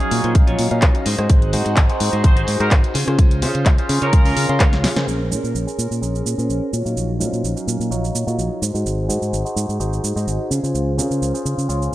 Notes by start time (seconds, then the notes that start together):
Already playing: F#3 C#4 G#4 F5
0.00 D#4 F#4 C#5 F5, closed hi-hat, tambourine
0.11 A#2, open hi-hat, tambourine
0.23 A#2 F4 F#4 C5, closed hi-hat, tambourine
0.35 A#1 F#3 C#4 D#4 F5, kick, closed hi-hat, tambourine
0.47 F4 F#4 C#5, closed hi-hat
0.59 A#2, open hi-hat, tambourine
0.71 A#2 F#3 C#4 D#4 F5, closed hi-hat, tambourine
0.82 A#1 F4 F#4 D#5, kick, clap, closed hi-hat, tambourine
0.95 closed hi-hat, tambourine
1.05 G#2 C4 F#4 G#4 C5 F#5, open hi-hat, tambourine
1.18 G#2 D#4 F#4 G#4 C5, cross-stick, closed hi-hat, tambourine
1.29 G#1, kick, closed hi-hat, tambourine
1.42 closed hi-hat
1.53 G#2 D#4 F#4 G#4 C5, open hi-hat, tambourine
1.65 G#2, muted clean electric guitar stroke, closed hi-hat, tambourine
1.76 G#1, kick, clap, closed hi-hat
1.89 D#4 F#4 G#4 C5, closed hi-hat, tambourine
2.00 G#2, open hi-hat, tambourine
2.13 G#2 F#4 G#4 C5, tambourine
2.24 G#1 D#4 F#4 G#4 C5, kick, closed hi-hat, tambourine
2.36 F#4 G#4 C5, closed hi-hat
2.47 G#2, open hi-hat, tambourine
2.60 G#2 D#4 F#4 G#4 A#4 C5, closed hi-hat, tambourine
2.71 G#1 F#4 G#4 C5, kick, clap, closed hi-hat
2.84 closed hi-hat, tambourine
2.94 C#3 C#4 F4 C5 F5 C6, open hi-hat, tambourine
3.07 C#3 C#4 F4 G#4 C5, cross-stick, closed hi-hat, tambourine
3.18 C#2, kick, closed hi-hat, tambourine
3.31 closed hi-hat, tambourine
3.42 C#3 C#4 F4 G#4 C5, open hi-hat, tambourine
3.54 C#3, muted clean electric guitar stroke, closed hi-hat, tambourine
3.65 C#2, kick, clap, closed hi-hat, tambourine
3.78 C#4 F4 G#4 C5, closed hi-hat, tambourine
3.89 C#3, open hi-hat, tambourine
4.01 C#3 C#4 F4 A#4 C#5, closed hi-hat, tambourine
4.13 C#2 C#4 F4 G#4 C6, kick, closed hi-hat, tambourine
4.25 C#4 F4 A#4, open hi-hat, tambourine
4.37 C#3, open hi-hat, tambourine
4.49 C#3 C#4 F4 G#4 C6, closed hi-hat, tambourine
4.60 C#2 C#4 F4 C#5, kick, clap, closed hi-hat, tambourine
4.73 snare, closed hi-hat, tambourine
4.83 C#3, muted clean electric guitar stroke, snare, open hi-hat, tambourine
4.96 C#3 C#4 G#4 A#4 C5, snare, closed hi-hat, tambourine
5.07 A#1 C#4 G#4 C5 C6, shaker
5.31 A#2 C#4 G#4 A#4 C#5 C6, shaker
5.44 A#2, shaker
5.55 A#1, shaker
5.67 C#4 G#4 A#4 C6, shaker
5.78 A#2, shaker
5.91 A#2, shaker
6.01 A#1 C#4 G#4 A#4 C#5 C6, shaker
6.15 shaker
6.25 A#2, muted clean electric guitar stroke, shaker
6.37 A#2 C#4 G#4 A#4 C5 C6, shaker
6.49 A#1, shaker
6.72 A#2 F#3 F4 F#4 C#5 F5, shaker
6.85 A#2 F#3 D#4 C#5 F5, shaker
6.97 A#1, shaker
7.19 A#2 F#3 C#4 D#4 F4 F#4 C5 F5, shaker
7.33 A#2, shaker
7.44 A#1, shaker
7.56 F#3 C#4 D#4 F5, shaker
7.67 A#2, shaker
7.80 A#2, shaker
7.90 A#1 F#3 D#4 F4 F#4 C#5 F5, shaker
8.04 shaker
8.14 A#2, muted clean electric guitar stroke, shaker
8.27 A#2 F#3 D#4 F4 F#4 G#4 C#5 F5, shaker
8.38 A#1, shaker
8.61 G#2 F#4 G#4 C5 F#5 C6, shaker
8.74 G#2 D#4 F#4 G#4 C5, shaker
8.86 G#1, shaker
9.09 G#2 D#4 F#4 G#4 C5, shaker
9.22 G#2, shaker
9.33 G#1, shaker
9.45 D#4 F#4 G#4 C5, shaker
9.56 G#2, shaker
9.69 G#2, shaker
9.79 G#1 D#4 F#4 G#4 C5, shaker
9.93 shaker
10.04 G#2, shaker
10.16 G#2 D#4 F#4 G#4 C5 D#5, shaker
10.27 G#1, shaker
10.50 C#3 C#4 F4 C5 F5, shaker
10.63 C#3 C#4 F4 G#4 C5, shaker
10.74 C#2, shaker
10.98 C#3 C#4 F4 G#4 A#4 C5, shaker
11.11 C#3, shaker
11.22 C#2, shaker
11.34 C#4 F4 G#4 C5, shaker
11.45 C#3, shaker
11.58 C#3, shaker
11.68 C#2 C#4 F4 G#4 C#5 C6, shaker
11.82 shaker